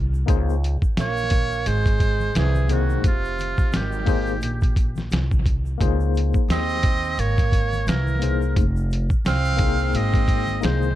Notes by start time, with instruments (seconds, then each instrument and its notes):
Already playing: upright bass C2
0.14 shaker
0.26 upright bass C#2, tine electric piano A#3 D#4 G#4 C5, kick, closed hi-hat, shaker
0.49 shaker
0.64 closed hi-hat, shaker
0.82 kick, shaker
0.97 upright bass A#1, tenor saxophone A#3, muted trumpet C#5, snare, closed hi-hat, shaker
1.17 shaker
1.30 kick, closed hi-hat, high conga, low conga, shaker
1.51 shaker
1.66 upright bass G#1, tenor saxophone G#3, muted trumpet C5, closed hi-hat, shaker
1.86 kick, closed hi-hat, shaker
2.00 kick, closed hi-hat, shaker
2.20 high conga, shaker
2.35 upright bass C2, tenor saxophone E3, muted trumpet G#4, snare, closed hi-hat, shaker
2.55 high conga, shaker
2.68 tenor saxophone D#3, tine electric piano A#3 D#4 G#4 C5, closed hi-hat, low conga, shaker
2.73 muted trumpet F#4
2.90 shaker
3.04 upright bass F1, tenor saxophone C3, muted trumpet F4, kick, closed hi-hat, shaker
3.25 shaker
3.39 closed hi-hat, high conga, shaker
3.58 muted upright bass stroke, kick, shaker
3.72 upright bass G#1, tenor saxophone D#3, muted trumpet G4, snare, closed hi-hat, shaker
3.92 shaker
4.05 tine electric piano A#3 D#4 G#4 C5, kick, open hi-hat, high conga, low conga, shaker
4.27 shaker
4.41 upright bass A#1, closed hi-hat, high conga, shaker
4.61 kick, closed hi-hat, shaker
4.76 kick, closed hi-hat, shaker
4.96 snare, high conga, shaker
5.11 upright bass C2, snare, closed hi-hat, shaker
5.31 kick, high conga, shaker
5.45 kick, closed hi-hat, low conga, shaker
5.66 shaker
5.78 upright bass C#2, tine electric piano A#3 D#4 G#4 C5, kick, closed hi-hat, shaker
6.00 shaker
6.15 closed hi-hat, shaker
6.34 muted upright bass stroke, kick, shaker
6.48 upright bass D#2, tenor saxophone C4, muted trumpet D#5, snare, closed hi-hat, shaker
6.69 shaker
6.83 kick, closed hi-hat, high conga, low conga, shaker
7.04 shaker
7.18 upright bass G#1, tenor saxophone A#3, muted trumpet C#5, closed hi-hat, shaker
7.38 kick, closed hi-hat, shaker
7.52 kick, closed hi-hat, shaker
7.73 high conga, shaker
7.87 upright bass C2, tenor saxophone E3, muted trumpet A#4, snare, closed hi-hat, shaker
8.07 high conga, shaker
8.19 tine electric piano A#3 D#4 G#4 C5, closed hi-hat, low conga, shaker
8.42 shaker
8.56 upright bass F1, kick, closed hi-hat, shaker
8.76 shaker
8.91 closed hi-hat, shaker
9.10 muted upright bass stroke, kick, shaker
9.25 upright bass C2, tenor saxophone C4, muted trumpet F5, snare, closed hi-hat, shaker
9.45 shaker
9.56 tine electric piano A#3 D#4 G#4 C5, kick, closed hi-hat, high conga, low conga, shaker
9.78 shaker
9.93 upright bass G#1, tenor saxophone C4, muted trumpet D#5, closed hi-hat, shaker
10.13 kick, closed hi-hat, shaker
10.28 kick, closed hi-hat, shaker
10.47 high conga, shaker
10.60 upright bass C2, tenor saxophone G#3, tine electric piano A#3 D#4 G#4 C5, closed hi-hat, shaker
10.65 muted trumpet C5, snare
10.82 high conga, shaker